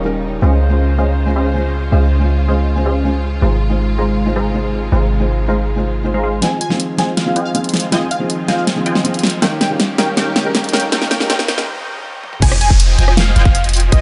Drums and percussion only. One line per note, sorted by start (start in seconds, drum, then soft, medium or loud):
6.42 snare soft
6.42 closed hi-hat medium
6.61 closed hi-hat medium
6.70 snare soft
6.80 closed hi-hat medium
6.99 snare soft
6.99 closed hi-hat medium
7.17 snare soft
7.17 closed hi-hat medium
7.36 closed hi-hat medium
7.55 closed hi-hat medium
7.64 closed hi-hat soft
7.69 closed hi-hat medium
7.74 snare medium
7.74 closed hi-hat soft
7.77 closed hi-hat medium
7.80 closed hi-hat medium
7.92 snare medium
7.92 closed hi-hat medium
8.11 closed hi-hat medium
8.30 closed hi-hat medium
8.48 snare medium
8.48 closed hi-hat medium
8.67 snare medium
8.67 closed hi-hat medium
8.86 closed hi-hat medium
8.95 snare medium
9.05 closed hi-hat medium
9.14 closed hi-hat soft
9.19 closed hi-hat medium
9.23 snare medium
9.23 closed hi-hat soft
9.27 closed hi-hat medium
9.30 closed hi-hat medium
9.42 snare medium
9.42 closed hi-hat medium
9.61 snare medium
9.61 closed hi-hat medium
9.80 snare medium
9.80 closed hi-hat medium
9.98 snare medium
9.98 closed hi-hat medium
10.17 snare medium
10.17 closed hi-hat medium
10.36 snare medium
10.36 closed hi-hat medium
10.55 snare medium
10.55 closed hi-hat medium
10.64 closed hi-hat soft
10.69 closed hi-hat medium
10.73 snare medium
10.73 closed hi-hat soft
10.77 closed hi-hat medium
10.80 closed hi-hat medium
10.92 snare medium
10.92 closed hi-hat medium
11.02 snare medium
11.11 snare medium
11.11 closed hi-hat medium
11.20 snare medium
11.30 snare loud
11.30 closed hi-hat medium
11.39 snare medium
11.48 snare loud
11.48 closed hi-hat medium
11.58 snare medium
12.23 high tom medium
12.33 mid tom medium
12.42 kick loud
12.42 closed hi-hat medium
12.42 crash loud
12.52 cross-stick medium
12.61 closed hi-hat medium
12.70 kick medium
12.80 closed hi-hat medium
12.99 closed hi-hat medium
13.08 cross-stick medium
13.17 snare loud
13.17 closed hi-hat medium
13.36 closed hi-hat medium
13.45 kick loud
13.55 closed hi-hat medium
13.64 closed hi-hat medium
13.69 closed hi-hat medium
13.73 closed hi-hat medium
13.73 open hi-hat medium
13.80 closed hi-hat medium
13.92 kick loud
13.92 closed hi-hat medium